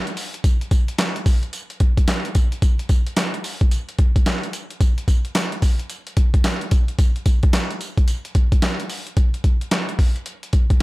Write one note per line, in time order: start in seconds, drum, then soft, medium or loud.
0.07 closed hi-hat medium
0.17 open hi-hat medium
0.17 tambourine medium
0.34 closed hi-hat medium
0.44 kick loud
0.44 closed hi-hat medium
0.44 tambourine medium
0.61 closed hi-hat soft
0.71 kick medium
0.71 closed hi-hat medium
0.71 tambourine medium
0.88 closed hi-hat medium
0.98 snare loud
0.98 clap loud
0.98 closed hi-hat medium
0.98 tambourine medium
1.16 closed hi-hat medium
1.26 kick medium
1.26 open hi-hat medium
1.26 tambourine medium
1.43 closed hi-hat soft
1.53 closed hi-hat medium
1.53 tambourine medium
1.70 closed hi-hat soft
1.80 kick medium
1.80 closed hi-hat medium
1.97 kick medium
1.97 closed hi-hat medium
2.08 snare loud
2.08 clap medium
2.08 closed hi-hat medium
2.08 tambourine medium
2.25 closed hi-hat medium
2.35 kick loud
2.35 closed hi-hat medium
2.35 tambourine medium
2.52 closed hi-hat medium
2.62 kick loud
2.62 closed hi-hat medium
2.62 tambourine medium
2.79 closed hi-hat medium
2.89 kick medium
2.89 closed hi-hat medium
2.89 tambourine medium
3.07 closed hi-hat medium
3.17 snare loud
3.17 clap medium
3.17 closed hi-hat medium
3.17 tambourine medium
3.34 closed hi-hat medium
3.44 open hi-hat medium
3.44 tambourine medium
3.61 kick medium
3.61 closed hi-hat soft
3.71 closed hi-hat medium
3.71 tambourine medium
3.89 closed hi-hat medium
3.99 kick medium
3.99 closed hi-hat medium
4.16 kick medium
4.16 closed hi-hat medium
4.26 snare loud
4.26 clap medium
4.26 closed hi-hat medium
4.26 tambourine medium
4.43 closed hi-hat medium
4.53 closed hi-hat medium
4.53 tambourine medium
4.71 closed hi-hat medium
4.81 kick loud
4.81 closed hi-hat medium
4.81 tambourine medium
4.98 closed hi-hat medium
5.08 kick medium
5.08 closed hi-hat medium
5.08 tambourine medium
5.25 closed hi-hat medium
5.35 snare loud
5.35 clap loud
5.35 closed hi-hat medium
5.35 tambourine loud
5.52 closed hi-hat medium
5.62 kick medium
5.62 open hi-hat medium
5.62 tambourine medium
5.79 closed hi-hat soft
5.90 closed hi-hat medium
5.90 tambourine medium
6.07 closed hi-hat medium
6.17 kick medium
6.17 closed hi-hat medium
6.34 kick medium
6.34 closed hi-hat medium
6.44 snare loud
6.44 clap medium
6.44 closed hi-hat medium
6.44 tambourine medium
6.61 closed hi-hat medium
6.71 kick loud
6.71 closed hi-hat medium
6.71 tambourine medium
6.88 closed hi-hat medium
6.99 kick loud
6.99 closed hi-hat medium
6.99 tambourine medium
7.16 closed hi-hat medium
7.26 kick medium
7.26 closed hi-hat medium
7.26 tambourine medium
7.43 kick loud
7.43 closed hi-hat medium
7.53 snare loud
7.53 clap loud
7.53 closed hi-hat medium
7.53 tambourine medium
7.71 closed hi-hat medium
7.81 closed hi-hat medium
7.81 tambourine medium
7.98 kick medium
7.98 closed hi-hat soft
8.08 closed hi-hat medium
8.08 tambourine medium
8.25 closed hi-hat soft
8.35 kick medium
8.35 closed hi-hat medium
8.52 kick medium
8.52 closed hi-hat medium
8.62 snare loud
8.62 clap medium
8.62 closed hi-hat medium
8.62 tambourine medium
8.80 closed hi-hat medium
8.89 open hi-hat medium
8.89 tambourine medium
9.07 closed hi-hat medium
9.17 kick loud
9.17 closed hi-hat medium
9.34 closed hi-hat medium
9.44 kick medium
9.44 closed hi-hat medium
9.61 closed hi-hat medium
9.71 snare loud
9.71 clap medium
9.71 closed hi-hat medium
9.89 closed hi-hat medium
9.99 kick medium
9.99 open hi-hat medium
10.16 closed hi-hat soft
10.26 closed hi-hat medium
10.43 closed hi-hat soft
10.53 kick medium
10.53 closed hi-hat medium
10.70 kick medium
10.70 closed hi-hat medium